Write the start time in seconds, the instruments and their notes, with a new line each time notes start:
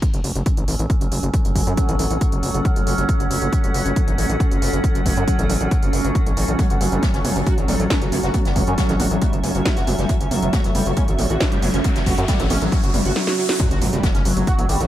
Already playing: synth drone F#3 C#4, ambient pad C#4
0.02 kick, closed hi-hat
0.14 analog synth bass F#1, closed hi-hat
0.24 analog synth bass F#1, open hi-hat
0.35 analog synth bass F#1, ambient pad A4, closed hi-hat
0.46 kick, closed hi-hat
0.57 analog synth bass A1, closed hi-hat
0.68 analog synth bass A1, open hi-hat
0.77 analog synth bass A1, ambient pad F#5, closed hi-hat
0.90 kick, closed hi-hat
1.01 analog synth bass F#1, closed hi-hat
1.12 analog synth bass F#1, open hi-hat
1.23 analog synth bass F#1, closed hi-hat
1.34 kick, closed hi-hat
1.45 analog synth bass F#1, closed hi-hat
1.56 analog synth bass F#1, kick, open hi-hat
1.67 analog synth bass F#2, closed hi-hat
1.77 kick, closed hi-hat
1.89 analog synth bass A1, closed hi-hat
1.99 analog synth bass A1, open hi-hat
2.11 analog synth bass A1, closed hi-hat
2.21 kick, closed hi-hat
2.32 analog synth bass F#1, closed hi-hat
2.43 analog synth bass F#1, open hi-hat
2.54 analog synth bass F#1, closed hi-hat
2.65 kick, closed hi-hat
2.76 analog synth bass F#1, closed hi-hat
2.87 analog synth bass F#1, open hi-hat
2.98 analog synth bass F#1, closed hi-hat
3.09 kick, closed hi-hat
3.20 analog synth bass F#1, closed hi-hat
3.31 analog synth bass F#1, open hi-hat
3.42 analog synth bass F#1, closed hi-hat
3.53 kick, closed hi-hat
3.64 analog synth bass F#1, closed hi-hat
3.74 analog synth bass F#1, open hi-hat
3.86 analog synth bass F#1, closed hi-hat
3.96 kick, closed hi-hat
4.08 analog synth bass A1, closed hi-hat
4.18 analog synth bass A1, open hi-hat
4.29 analog synth bass A1, closed hi-hat
4.40 kick, closed hi-hat
4.51 analog synth bass F#1, closed hi-hat
4.62 analog synth bass F#1, open hi-hat
4.73 analog synth bass F#1, closed hi-hat
4.84 kick, closed hi-hat
4.95 analog synth bass F#1, closed hi-hat
5.06 analog synth bass F#1, kick, open hi-hat
5.17 analog synth bass F#2, closed hi-hat
5.28 kick, closed hi-hat
5.39 analog synth bass A1, closed hi-hat
5.50 analog synth bass A1, open hi-hat
5.61 analog synth bass A1, closed hi-hat
5.71 kick, closed hi-hat
5.83 analog synth bass F#1, closed hi-hat
5.93 analog synth bass F#1, open hi-hat
6.04 analog synth bass F#1, closed hi-hat
6.15 kick, closed hi-hat
6.26 analog synth bass A1, closed hi-hat
6.37 analog synth bass A1, open hi-hat
6.48 analog synth bass A1, closed hi-hat
6.59 analog synth lead F#3, kick, closed hi-hat, mid tom
6.70 analog synth bass F#1, analog synth lead F#4, closed hi-hat
6.81 analog synth bass F#1, analog synth lead F#3, closed hi-hat, mid tom, open hi-hat
6.92 analog synth bass F#1, analog synth lead G3, closed hi-hat
7.03 analog synth lead F#3, kick, snare, closed hi-hat, mid tom
7.14 analog synth bass F#1, analog synth lead C#4, snare, closed hi-hat
7.25 analog synth bass F#1, analog synth lead F#3, mid tom, open hi-hat
7.36 analog synth bass F#1, analog synth lead F#3, closed hi-hat
7.46 analog synth lead F#4, kick, closed hi-hat, mid tom
7.58 analog synth bass A1, analog synth lead F#3, closed hi-hat
7.68 analog synth bass A1, analog synth lead G3, closed hi-hat, mid tom, open hi-hat
7.80 analog synth bass A1, analog synth lead F#3, closed hi-hat
7.90 analog synth lead C#4, kick, snare, closed hi-hat, mid tom
8.02 analog synth bass F#1, analog synth lead F#3, closed hi-hat
8.12 analog synth bass F#1, analog synth lead F#3, ambient pad E5, closed hi-hat, mid tom, open hi-hat
8.23 analog synth bass F#1, analog synth lead F#4, snare, closed hi-hat
8.34 analog synth lead F#3, kick, closed hi-hat, mid tom
8.45 analog synth bass F#1, analog synth lead G3, snare, closed hi-hat
8.56 analog synth bass F#1, analog synth lead F#3, kick, closed hi-hat, mid tom, open hi-hat
8.67 analog synth bass F#2, analog synth lead C#4, closed hi-hat
8.78 analog synth lead F#3, kick, snare, closed hi-hat, mid tom
8.89 analog synth bass A1, analog synth lead F#3, snare, closed hi-hat
9.00 analog synth bass A1, analog synth lead F#4, closed hi-hat, mid tom, open hi-hat
9.11 analog synth bass A1, analog synth lead F#3, closed hi-hat
9.22 analog synth lead G3, kick, closed hi-hat, mid tom
9.33 analog synth bass F#1, analog synth lead F#3, closed hi-hat
9.44 analog synth bass F#1, analog synth lead C#4, closed hi-hat, mid tom, open hi-hat
9.55 analog synth bass F#1, analog synth lead F#3, closed hi-hat
9.65 analog synth lead F#3, kick, snare, closed hi-hat, mid tom
9.77 analog synth bass F#1, analog synth lead F#4, snare, closed hi-hat
9.87 analog synth bass F#1, analog synth lead F#3, closed hi-hat, mid tom, open hi-hat
9.99 analog synth bass F#1, analog synth lead G3, snare, closed hi-hat
10.09 analog synth lead F#3, kick, closed hi-hat, mid tom, riser
10.21 analog synth bass F#1, analog synth lead C#4, closed hi-hat
10.31 analog synth bass F#1, analog synth lead F#3, closed hi-hat, mid tom, open hi-hat
10.42 analog synth bass F#1, analog synth lead F#3, closed hi-hat
10.53 analog synth lead F#4, kick, snare, closed hi-hat, mid tom
10.64 analog synth bass F#1, analog synth lead F#3, snare, closed hi-hat
10.75 analog synth bass F#1, analog synth lead G3, mid tom, open hi-hat
10.86 analog synth bass F#1, analog synth lead F#3, closed hi-hat
10.97 analog synth lead C#4, kick, closed hi-hat, mid tom
11.08 analog synth bass A1, analog synth lead F#3, closed hi-hat
11.19 analog synth bass A1, analog synth lead F#3, closed hi-hat, mid tom, open hi-hat
11.30 analog synth bass A1, analog synth lead F#4, closed hi-hat
11.40 analog synth lead F#3, kick, snare, closed hi-hat, mid tom
11.52 analog synth bass F#1, analog synth lead G3, closed hi-hat
11.62 analog synth bass F#1, analog synth lead F#3, closed hi-hat, mid tom, open hi-hat
11.73 analog synth bass F#1, analog synth lead C#4, snare, closed hi-hat
11.84 analog synth lead F#3, kick, closed hi-hat, mid tom
11.96 analog synth bass F#1, analog synth lead F#3, snare, closed hi-hat
12.06 analog synth bass F#1, analog synth lead F#4, kick, closed hi-hat, mid tom, open hi-hat
12.18 analog synth bass F#2, analog synth lead F#3, closed hi-hat
12.28 analog synth lead G3, kick, snare, closed hi-hat, mid tom
12.39 analog synth bass A1, analog synth lead F#3, snare, closed hi-hat
12.50 analog synth bass A1, analog synth lead C#4, closed hi-hat, mid tom, open hi-hat
12.61 analog synth bass A1, analog synth lead F#3, closed hi-hat
12.72 analog synth lead F#3, kick, closed hi-hat, mid tom
12.83 analog synth bass F#1, analog synth lead F#4, closed hi-hat
12.94 analog synth bass F#1, analog synth lead G3, closed hi-hat, mid tom, open hi-hat
13.05 analog synth bass F#1, analog synth lead F#4, closed hi-hat
13.16 analog synth lead F#3, snare
13.27 analog synth lead F#3, snare
13.38 analog synth lead F#3
13.49 analog synth lead F#3, snare
13.59 analog synth lead F#3, synth drone F#3 C#4, kick, closed hi-hat, impact
13.71 analog synth bass F#1, analog synth lead F#4, closed hi-hat
13.81 analog synth bass F#1, analog synth lead F#3, closed hi-hat, mid tom, open hi-hat
13.93 analog synth bass F#1, analog synth lead G3, closed hi-hat
14.03 analog synth lead F#3, kick, snare, closed hi-hat, mid tom
14.15 analog synth bass F#1, analog synth lead C#4, snare, closed hi-hat
14.25 analog synth bass F#1, analog synth lead F#3, open hi-hat
14.37 analog synth bass F#1, analog synth lead F#3, closed hi-hat, mid tom
14.47 analog synth lead F#4, kick, closed hi-hat
14.59 analog synth bass A1, analog synth lead F#3, closed hi-hat, mid tom
14.69 analog synth bass A1, analog synth lead G3, closed hi-hat, open hi-hat
14.80 analog synth bass A1, analog synth lead F#3, closed hi-hat